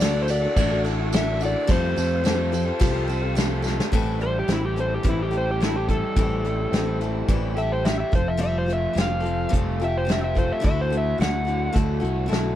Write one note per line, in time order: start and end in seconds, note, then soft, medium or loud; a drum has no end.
0.00 0.46 D2 medium
0.00 0.28 D3 medium
0.00 0.28 A3 medium
0.00 0.18 D4 medium
0.00 0.29 E4 medium
0.00 0.16 F#4 loud
0.00 0.28 F#4 medium
0.00 3.89 A4 medium
0.00 0.15 A4 loud
0.00 0.27 A4 medium
0.00 0.23 D5 loud
0.00 1.64 E5 medium
0.00 1.65 F#5 medium
0.00 1.65 D6 medium
0.00 snare loud
0.00 ride loud
0.00 tambourine medium
0.15 0.28 D4 medium
0.15 0.29 F#4 medium
0.15 0.30 A4 medium
0.22 0.29 C5 medium
0.28 0.57 E4 soft
0.28 0.57 F#4 soft
0.28 0.56 A4 medium
0.28 0.81 D5 medium
0.28 muted overdriven electric guitar stroke medium
0.28 ride medium
0.28 tambourine medium
0.43 0.74 D4 medium
0.43 0.72 F#4 medium
0.43 0.71 A4 medium
0.57 1.54 A1 loud
0.57 0.85 D3 medium
0.57 0.85 A3 medium
0.57 0.86 E4 medium
0.57 0.85 F#4 medium
0.57 0.83 A4 medium
0.57 kick loud
0.57 ride loud
0.57 tambourine medium
0.71 1.01 D4 medium
0.71 0.99 F#4 medium
0.71 0.98 A4 medium
0.85 1.12 E4 soft
0.85 1.13 F#4 medium
0.85 1.12 A4 medium
0.85 ride medium
0.85 tambourine soft
0.98 1.13 F#4 medium
0.98 1.15 A4 medium
1.02 1.12 D4 medium
1.12 1.38 D3 medium
1.12 1.40 A3 medium
1.12 1.27 D4 medium
1.12 1.41 E4 medium
1.12 1.40 F#4 medium
1.12 1.26 F#4 medium
1.12 1.24 A4 loud
1.12 1.39 A4 medium
1.12 1.43 E5 loud
1.12 snare loud
1.12 ride loud
1.12 tambourine loud
1.25 1.39 D4 medium
1.25 1.41 F#4 medium
1.25 1.43 A4 medium
1.39 1.66 D3 medium
1.39 1.55 D4 medium
1.39 1.69 F#4 soft
1.39 1.54 F#4 medium
1.39 1.68 A4 medium
1.39 1.52 A4 medium
1.39 ride medium
1.39 tambourine medium
1.43 1.68 E4 soft
1.43 1.72 D5 medium
1.53 1.68 D4 medium
1.53 1.67 F#4 medium
1.53 1.71 A4 medium
1.67 1.93 F2 loud
1.67 1.96 F3 medium
1.67 2.22 F3 medium
1.67 1.96 G3 medium
1.67 1.96 A3 loud
1.67 1.96 C4 medium
1.67 1.97 C4 medium
1.67 1.98 F4 loud
1.67 1.96 G4 loud
1.67 1.95 A4 medium
1.67 1.99 A4 loud
1.67 3.91 F5 medium
1.67 3.91 G5 medium
1.67 3.91 C6 medium
1.67 kick loud
1.67 ride medium
1.67 tambourine soft
1.71 3.34 C5 medium
1.96 2.71 F2 medium
1.96 2.23 A3 medium
1.96 2.24 C4 medium
1.96 2.24 C4 soft
1.96 2.25 F4 medium
1.96 2.24 G4 soft
1.96 2.24 A4 medium
1.96 2.26 A4 medium
1.96 ride medium
1.96 tambourine medium
2.23 2.66 F3 medium
2.23 2.52 G3 medium
2.23 2.51 A3 loud
2.23 2.53 C4 medium
2.23 2.39 C4 medium
2.23 2.37 F4 loud
2.23 2.52 G4 medium
2.23 2.51 A4 medium
2.23 2.35 A4 loud
2.23 snare loud
2.23 ride loud
2.23 tambourine medium
2.36 2.51 C4 medium
2.36 2.51 F4 medium
2.36 2.52 A4 medium
2.52 2.80 C4 soft
2.52 2.80 G4 medium
2.52 2.80 A4 medium
2.52 muted overdriven electric guitar stroke medium
2.52 ride medium
2.52 tambourine medium
2.65 2.95 C4 medium
2.65 2.93 F4 medium
2.65 2.91 A4 medium
2.79 3.79 C2 loud
2.79 3.08 F3 medium
2.79 3.08 G3 medium
2.79 3.09 C4 loud
2.79 3.08 G4 loud
2.79 3.06 A4 medium
2.79 kick medium
2.79 ride loud
2.79 tambourine medium
2.92 3.23 F4 medium
2.92 3.21 A4 medium
2.96 3.24 C4 medium
3.08 3.35 C4 medium
3.08 3.36 G4 medium
3.08 3.36 A4 medium
3.08 ride medium
3.08 tambourine soft
3.22 3.36 C4 medium
3.22 3.37 F4 medium
3.22 3.38 A4 medium
3.35 3.78 F3 medium
3.35 3.64 G3 medium
3.35 3.62 A3 medium
3.35 3.64 C4 medium
3.35 3.52 C4 loud
3.35 3.51 F4 medium
3.35 3.63 G4 medium
3.35 3.61 A4 medium
3.35 snare loud
3.35 ride medium
3.35 tambourine loud
3.39 3.49 A4 medium
3.50 3.64 C4 medium
3.50 3.64 F4 medium
3.50 3.65 A4 medium
3.62 3.90 A3 medium
3.62 3.80 C4 medium
3.62 3.92 C4 medium
3.62 3.79 F4 medium
3.62 3.92 G4 medium
3.62 3.91 A4 medium
3.62 tambourine medium
3.67 3.77 A4 medium
3.67 snare medium
3.78 3.92 C4 soft
3.78 3.92 F4 medium
3.78 3.91 A4 medium
3.78 snare medium
3.92 4.42 A1 loud
3.92 5.32 A2 medium
3.92 4.20 A2 medium
3.92 4.21 E3 loud
3.92 4.21 G3 medium
3.92 4.21 C4 loud
3.92 4.20 E4 loud
3.92 4.19 A4 medium
3.92 kick loud
3.92 crash loud
4.20 5.04 G3 medium
4.20 4.48 C4 soft
4.20 4.49 E4 soft
4.20 4.48 A4 soft
4.20 4.36 C5 medium
4.20 closed hi-hat medium
4.24 4.47 G3 soft
4.39 4.50 G4 medium
4.47 4.98 A1 medium
4.47 4.77 G3 medium
4.47 5.60 C4 medium
4.47 4.77 C4 medium
4.47 4.76 E4 medium
4.47 snare loud
4.47 closed hi-hat loud
4.52 4.64 E4 medium
4.52 4.75 A4 medium
4.65 4.78 G4 medium
4.76 6.17 E3 medium
4.76 5.03 G3 soft
4.76 5.04 C4 soft
4.76 5.04 E4 soft
4.76 5.03 A4 soft
4.76 closed hi-hat medium
4.80 4.92 C5 medium
4.94 5.06 G4 medium
5.03 6.03 A1 loud
5.03 5.32 A2 medium
5.03 5.32 E3 medium
5.03 5.32 G3 medium
5.03 5.89 G3 medium
5.03 5.31 C4 medium
5.03 5.30 E4 medium
5.03 5.29 A4 medium
5.03 kick loud
5.03 closed hi-hat loud
5.09 5.21 E4 medium
5.22 5.34 G4 medium
5.31 5.59 G3 soft
5.31 5.60 C4 soft
5.31 5.60 E4 soft
5.31 7.55 G4 medium
5.31 5.60 A4 soft
5.31 closed hi-hat medium
5.37 5.49 C5 medium
5.51 5.63 G4 medium
5.60 5.89 G3 medium
5.60 6.71 C4 medium
5.60 5.89 C4 medium
5.60 5.88 E4 medium
5.60 5.76 E4 medium
5.60 5.87 A4 medium
5.60 snare medium
5.60 closed hi-hat medium
5.76 5.89 G4 medium
5.88 6.44 G3 medium
5.88 6.16 G3 soft
5.88 6.17 C4 soft
5.88 6.17 E4 medium
5.88 6.17 A4 soft
5.88 6.99 A4 medium
5.88 kick medium
5.88 closed hi-hat medium
6.16 6.66 A1 loud
6.16 6.45 A2 medium
6.16 7.57 A2 medium
6.16 6.45 E3 medium
6.16 6.45 G3 medium
6.16 6.46 C4 medium
6.16 6.45 E4 medium
6.16 6.43 A4 medium
6.16 kick loud
6.16 closed hi-hat medium
6.44 7.27 G3 medium
6.44 6.72 G3 soft
6.44 6.74 C4 soft
6.44 6.74 E4 soft
6.44 6.73 A4 medium
6.44 closed hi-hat medium
6.71 7.22 A1 medium
6.71 7.01 G3 medium
6.71 7.83 C4 medium
6.71 7.02 C4 medium
6.71 snare loud
6.71 closed hi-hat medium
6.76 7.00 E4 medium
6.76 7.00 A4 medium
7.00 8.13 E3 medium
7.00 7.28 G3 soft
7.00 7.28 C4 soft
7.00 7.28 E4 medium
7.00 7.29 A4 medium
7.00 closed hi-hat medium
7.28 8.02 A1 medium
7.28 7.57 A2 medium
7.28 7.57 E3 medium
7.28 8.13 G3 medium
7.28 7.57 G3 medium
7.28 7.57 C4 medium
7.28 7.57 E4 medium
7.28 7.55 A4 loud
7.28 kick loud
7.28 closed hi-hat medium
7.55 7.84 G3 soft
7.55 7.85 C4 soft
7.55 7.86 E4 medium
7.55 8.12 G4 medium
7.55 7.85 A4 medium
7.55 7.71 E5 loud
7.55 closed hi-hat medium
7.72 7.85 C5 medium
7.85 8.13 G3 medium
7.85 8.13 C4 medium
7.85 8.12 E4 medium
7.85 8.10 A4 medium
7.85 7.99 E5 medium
7.85 snare loud
7.85 closed hi-hat medium
8.00 8.13 E5 medium
8.12 8.86 F1 medium
8.12 8.40 F3 medium
8.12 8.37 C4 soft
8.12 8.38 F4 medium
8.12 8.38 A4 medium
8.12 8.28 C5 medium
8.12 kick loud
8.12 closed hi-hat medium
8.28 8.41 E5 medium
8.37 8.67 F3 medium
8.37 9.24 F3 medium
8.37 8.68 G3 medium
8.37 8.68 C4 medium
8.37 8.67 F4 loud
8.37 8.65 A4 medium
8.37 closed hi-hat medium
8.44 8.56 E5 medium
8.58 8.70 C5 medium
8.66 9.52 A3 medium
8.66 8.93 C4 soft
8.66 8.94 F4 soft
8.66 8.95 A4 soft
8.66 closed hi-hat medium
8.73 8.98 E5 medium
8.93 9.45 F1 medium
8.93 9.23 G3 medium
8.93 9.23 C4 medium
8.93 10.09 C4 medium
8.93 9.21 F4 medium
8.93 9.19 A4 medium
8.93 closed hi-hat loud
8.98 9.53 F5 loud
8.98 snare loud
9.20 9.49 C4 soft
9.20 9.49 F4 soft
9.20 9.49 A4 medium
9.25 10.64 F3 medium
9.25 closed hi-hat medium
9.49 9.79 F3 medium
9.49 9.79 G3 medium
9.49 10.37 A3 medium
9.49 9.79 C4 medium
9.49 9.79 F4 medium
9.49 9.78 A4 medium
9.53 10.50 F1 loud
9.53 kick medium
9.53 closed hi-hat loud
9.80 10.05 C4 soft
9.80 10.05 F4 medium
9.80 10.65 G4 medium
9.80 10.07 A4 soft
9.80 closed hi-hat medium
9.84 9.96 E5 loud
9.97 10.10 C5 medium
10.05 10.35 G3 medium
10.05 10.35 C4 medium
10.05 10.36 F4 medium
10.05 10.34 A4 medium
10.05 closed hi-hat medium
10.10 10.65 C4 medium
10.10 10.23 E5 medium
10.10 snare loud
10.24 10.37 E5 medium
10.35 10.92 A3 medium
10.35 10.62 C4 soft
10.35 10.62 F4 soft
10.35 10.62 A4 medium
10.35 10.51 C5 medium
10.35 kick medium
10.35 closed hi-hat medium
10.52 10.65 E5 medium
10.60 10.90 D3 medium
10.60 10.91 A3 medium
10.60 10.91 E4 medium
10.60 10.91 F#4 medium
10.60 10.89 A4 medium
10.64 11.13 D2 loud
10.64 11.47 D3 medium
10.64 10.79 E5 medium
10.64 kick loud
10.64 closed hi-hat medium
10.81 10.93 C5 medium
10.90 11.74 A3 medium
10.90 11.19 E4 soft
10.90 11.20 F#4 soft
10.90 11.19 A4 medium
10.90 closed hi-hat medium
10.97 11.21 E5 medium
11.18 11.68 D2 medium
11.18 11.47 A3 medium
11.18 11.46 E4 medium
11.18 12.29 E4 medium
11.18 11.46 F#4 medium
11.18 11.44 A4 medium
11.18 11.75 F#5 medium
11.18 snare loud
11.18 closed hi-hat medium
11.45 12.55 D3 medium
11.45 11.72 E4 soft
11.45 11.72 F#4 soft
11.45 11.73 A4 medium
11.45 closed hi-hat medium
11.72 12.00 D2 medium
11.72 12.02 D3 medium
11.72 12.02 A3 medium
11.72 12.55 A3 medium
11.72 12.01 E4 medium
11.72 12.00 F#4 medium
11.72 11.99 A4 medium
11.72 kick medium
11.72 closed hi-hat loud
12.00 12.28 C2 medium
12.00 12.27 E4 medium
12.00 12.27 F#4 medium
12.00 12.55 F#4 medium
12.00 12.28 A4 medium
12.04 closed hi-hat medium
12.26 12.55 A3 medium
12.26 12.55 E4 medium
12.26 12.55 F#4 medium
12.26 12.53 A4 medium
12.31 12.55 B1 medium
12.31 snare medium
12.31 closed hi-hat medium